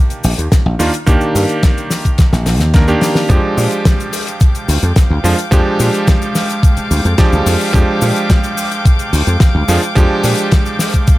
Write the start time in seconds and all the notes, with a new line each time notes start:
Already playing: D#3 A#3 D4 G4
0.10 closed hi-hat, cabasa
0.24 A#1, open hi-hat, cabasa
0.38 D#2, closed hi-hat, cabasa
0.52 kick, snare, closed hi-hat, cabasa
0.66 A#1
0.79 D#2 D#3 A#3 D4 F4, open hi-hat, cabasa
0.93 closed hi-hat, cabasa
1.06 D#2 D#3 A#3 D4 G4, kick, closed hi-hat, cabasa
1.21 cabasa
1.35 G2, open hi-hat, cabasa
1.49 closed hi-hat, cabasa
1.63 kick, snare, closed hi-hat, cabasa
1.78 closed hi-hat, cabasa
1.90 snare, open hi-hat, cabasa
2.05 kick, closed hi-hat, cabasa
2.18 kick, snare, closed hi-hat, cabasa
2.33 A#1, snare, closed hi-hat, cabasa
2.46 A#1, snare, open hi-hat, cabasa
2.60 D#2, snare, closed hi-hat, cabasa
2.74 D#3 A#3 D4 A#4, kick, snare, closed hi-hat, cabasa
2.88 D#3 A#3 D4 G4, cabasa
3.01 snare, open hi-hat, cabasa
3.15 snare, open hi-hat, cabasa
3.29 F2 F3 G#3 D4 G4 F5 G5 D6, kick, closed hi-hat, cabasa
3.57 A#2, open hi-hat, cabasa
3.71 closed hi-hat, cabasa
3.85 kick, snare, closed hi-hat, cabasa
4.00 closed hi-hat, cabasa
4.13 open hi-hat, cabasa
4.27 closed hi-hat, cabasa
4.40 kick, closed hi-hat, cabasa
4.55 closed hi-hat, cabasa
4.68 D2, open hi-hat, cabasa
4.82 F2, closed hi-hat, cabasa
4.96 kick, snare, closed hi-hat, cabasa
5.10 D2
5.24 F2 F3 G#3 D4 F4, open hi-hat, cabasa
5.39 closed hi-hat, cabasa
5.51 F2 F3 G#3 D4 G4, kick, closed hi-hat, cabasa
5.79 A#2, open hi-hat, cabasa
5.94 closed hi-hat, cabasa
6.07 kick, snare, closed hi-hat, cabasa
6.22 closed hi-hat, cabasa
6.35 snare, open hi-hat, cabasa
6.49 closed hi-hat, cabasa
6.63 kick, closed hi-hat, cabasa
6.77 muted slap bass stroke, closed hi-hat, cabasa
6.91 D2, open hi-hat, cabasa
7.05 F2, closed hi-hat, cabasa
7.18 F3 G#3 D4 G4, kick, snare, closed hi-hat, cabasa
7.33 D2, cabasa
7.46 F2, open hi-hat, cabasa
7.60 open hi-hat, cabasa
7.73 F2 F3 G#3 D4 G4, kick, closed hi-hat, cabasa
8.01 A#2, open hi-hat, cabasa
8.16 closed hi-hat, cabasa
8.30 kick, snare, closed hi-hat, cabasa
8.44 closed hi-hat, cabasa
8.57 open hi-hat, cabasa
8.72 closed hi-hat, cabasa
8.85 kick, closed hi-hat, cabasa
8.99 closed hi-hat, cabasa
9.13 D2, open hi-hat, cabasa
9.27 F2, closed hi-hat, cabasa
9.40 kick, snare, closed hi-hat, cabasa
9.55 D2
9.68 F2 F3 G#3 D4 F4, open hi-hat, cabasa
9.83 closed hi-hat, cabasa
9.95 F2 F3 G#3 D4 G4, kick, closed hi-hat, cabasa
10.23 A#2, open hi-hat, cabasa
10.37 closed hi-hat, cabasa
10.52 kick, snare, closed hi-hat, cabasa
10.66 closed hi-hat, cabasa
10.79 snare, open hi-hat, cabasa
10.93 kick, closed hi-hat, cabasa
11.07 kick, closed hi-hat, cabasa